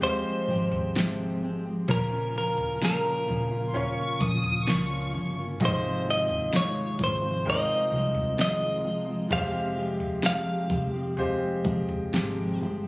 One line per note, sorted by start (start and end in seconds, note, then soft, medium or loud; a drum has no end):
0.00 0.21 F1 medium
0.00 1.90 C3 medium
0.00 0.47 F3 soft
0.00 1.85 F3 medium
0.00 1.91 G3 medium
0.00 0.48 G#3 medium
0.00 1.90 G#3 medium
0.00 1.87 G#3 medium
0.00 0.49 C4 medium
0.00 1.79 C4 medium
0.00 0.02 F4 medium
0.00 1.80 F4 medium
0.00 0.02 G4 medium
0.00 0.48 G4 medium
0.00 1.80 G4 medium
0.00 1.80 C5 medium
0.00 1.86 C5 medium
0.00 floor tom medium
0.48 1.85 G#1 medium
0.48 0.95 F3 medium
0.48 0.96 G#3 medium
0.48 0.96 C4 medium
0.48 0.96 G4 medium
0.72 floor tom medium
0.95 1.42 F2 medium
0.95 1.42 C3 medium
0.95 1.41 F3 medium
0.95 1.42 G#3 medium
0.95 1.43 C4 loud
0.95 1.43 G4 loud
0.95 snare loud
1.42 1.65 F3 medium
1.42 1.66 G#3 medium
1.42 1.66 C4 medium
1.42 1.64 G4 medium
1.65 1.87 F3 soft
1.65 1.89 G#3 soft
1.65 1.89 C4 soft
1.65 1.89 G4 medium
1.88 3.24 A#1 loud
1.88 2.11 A#2 medium
1.88 3.24 A#2 medium
1.88 5.57 C#3 medium
1.88 3.24 F3 medium
1.88 2.12 F3 medium
1.88 5.57 A#3 medium
1.88 2.12 A#3 medium
1.88 3.65 C#4 medium
1.88 2.11 C#4 medium
1.88 5.57 F4 medium
1.88 3.66 F4 medium
1.88 2.10 F4 medium
1.88 3.66 A#4 medium
1.88 2.37 A#4 medium
1.88 kick loud
1.88 floor tom loud
2.11 2.34 A#3 medium
2.11 2.36 C#4 medium
2.11 2.35 F4 medium
2.34 2.80 F3 medium
2.34 2.81 A#3 medium
2.34 2.81 C#4 medium
2.34 2.82 F4 medium
2.34 2.83 A#4 medium
2.58 floor tom medium
2.81 3.28 A#2 medium
2.81 3.26 F3 medium
2.81 3.27 A#3 medium
2.81 3.28 C#4 medium
2.81 3.29 F4 medium
2.81 4.31 A#4 medium
2.81 snare loud
3.27 4.17 A#1 loud
3.27 3.51 F3 medium
3.27 3.52 A#3 medium
3.27 3.51 C#4 medium
3.27 3.49 F4 medium
3.27 floor tom medium
3.51 4.20 A#3 soft
3.51 4.22 C#4 medium
3.51 4.21 F4 medium
3.68 3.75 C6 medium
3.74 5.51 C#4 medium
3.74 5.52 F4 medium
3.74 5.52 C#5 medium
3.74 4.21 C#6 medium
3.74 floor tom medium
4.20 4.64 A#1 medium
4.20 4.66 F3 medium
4.20 4.66 A#3 medium
4.20 4.67 C#4 medium
4.20 4.68 F4 medium
4.20 4.67 D#6 loud
4.20 kick loud
4.31 5.12 G#4 medium
4.44 floor tom medium
4.66 5.12 C#2 loud
4.66 5.14 A#2 medium
4.66 5.11 F3 loud
4.66 5.12 A#3 loud
4.66 5.13 C#4 medium
4.66 5.14 F4 loud
4.66 5.37 C#6 medium
4.66 snare loud
5.12 5.58 G1 medium
5.12 5.37 F3 medium
5.12 5.37 A#3 medium
5.12 5.36 C#4 medium
5.12 5.35 F4 medium
5.36 5.61 A#3 soft
5.36 5.61 C#4 soft
5.36 5.60 F4 medium
5.60 6.96 G#1 loud
5.60 5.84 G#2 medium
5.60 6.96 G#2 medium
5.60 7.37 C3 medium
5.60 9.27 C3 medium
5.60 5.84 D#3 loud
5.60 6.96 D#3 medium
5.60 5.84 F3 medium
5.60 7.36 G#3 medium
5.60 5.83 G#3 medium
5.60 12.88 G#3 medium
5.60 5.83 C4 loud
5.60 7.37 D#4 medium
5.60 7.37 F4 medium
5.60 9.27 F4 medium
5.60 5.82 F4 loud
5.60 7.37 D#5 medium
5.60 kick loud
5.60 floor tom loud
5.65 6.06 C5 medium
5.83 6.04 F3 medium
5.83 6.05 G#3 medium
5.83 6.06 C4 medium
5.83 6.07 F4 medium
6.06 6.52 F3 medium
6.06 6.52 G#3 medium
6.06 6.54 C4 medium
6.06 6.53 F4 medium
6.10 6.56 D#5 medium
6.30 floor tom medium
6.53 6.99 G#2 medium
6.53 7.00 D#3 medium
6.53 6.97 F3 medium
6.53 6.98 G#3 medium
6.53 7.00 F4 medium
6.53 7.03 C#5 medium
6.53 snare loud
6.98 7.65 G#1 loud
6.98 7.22 F3 medium
6.98 7.22 G#3 medium
6.98 7.21 C4 medium
6.98 7.20 F4 medium
6.98 kick loud
6.98 floor tom medium
7.04 7.49 C5 medium
7.21 7.89 F3 medium
7.21 7.90 G#3 medium
7.21 7.91 C4 medium
7.21 7.91 F4 medium
7.45 9.21 G#3 medium
7.45 9.22 C4 medium
7.45 9.22 D#4 medium
7.45 9.22 F4 medium
7.45 9.22 A#4 medium
7.45 floor tom medium
7.50 8.40 D#5 loud
7.90 9.27 C2 medium
7.90 8.37 F3 medium
7.90 8.37 G#3 medium
7.90 8.37 C4 medium
7.90 8.38 F4 medium
8.15 floor tom medium
8.37 8.84 G#2 medium
8.37 8.84 D#3 medium
8.37 8.82 F3 medium
8.37 8.83 G#3 loud
8.37 8.84 C4 loud
8.37 8.84 F4 loud
8.37 snare loud
8.41 9.32 D#5 loud
8.83 9.07 F3 medium
8.83 9.06 G#3 medium
8.83 9.05 C4 medium
8.83 9.05 F4 medium
9.06 9.28 F3 soft
9.06 9.29 G#3 soft
9.06 9.29 C4 medium
9.06 9.30 F4 medium
9.28 10.66 F1 loud
9.28 9.53 F2 medium
9.28 9.53 C3 medium
9.28 10.67 C3 medium
9.28 9.53 F3 medium
9.28 12.88 F3 medium
9.28 9.53 G#3 medium
9.28 11.08 G#3 medium
9.28 9.52 C4 medium
9.28 11.08 C4 medium
9.28 11.09 F4 medium
9.28 12.88 G4 medium
9.28 9.51 G4 medium
9.28 11.09 G4 medium
9.28 kick loud
9.28 floor tom loud
9.32 11.09 C5 medium
9.32 10.21 F5 loud
9.52 9.74 F3 soft
9.52 9.75 G#3 medium
9.52 9.76 C4 medium
9.52 9.76 G4 medium
9.75 10.22 F3 medium
9.75 10.22 G#3 medium
9.75 10.22 C4 medium
9.75 10.23 G4 medium
10.00 floor tom medium
10.22 10.70 F2 medium
10.22 10.70 C3 medium
10.22 10.67 F3 medium
10.22 10.68 G#3 medium
10.22 10.69 C4 medium
10.22 10.70 G4 loud
10.22 snare loud
10.26 12.58 F5 medium
10.68 11.61 F1 medium
10.68 10.93 F3 medium
10.68 10.93 G#3 medium
10.68 10.93 C4 medium
10.68 10.92 G4 medium
10.68 kick medium
10.68 floor tom medium
10.93 11.63 F3 soft
10.93 11.64 G#3 medium
10.93 11.65 C4 medium
10.93 11.65 G4 medium
11.17 12.88 G#3 medium
11.17 12.88 C4 medium
11.17 12.88 F4 medium
11.17 12.88 G4 medium
11.17 12.88 C5 medium
11.17 floor tom medium
11.64 12.10 F1 loud
11.64 12.12 F3 medium
11.64 12.13 G#3 medium
11.64 12.13 C4 medium
11.64 12.13 G4 medium
11.64 kick medium
11.89 floor tom medium
12.13 12.58 G#1 loud
12.13 12.61 F2 medium
12.13 12.61 C3 loud
12.13 12.59 F3 medium
12.13 12.60 G#3 medium
12.13 12.61 C4 loud
12.13 12.62 G4 loud
12.13 snare loud
12.60 12.88 G1 medium
12.60 12.84 F3 medium
12.60 12.84 G#3 medium
12.60 12.84 C4 medium
12.60 12.82 G4 medium
12.83 12.88 G4 medium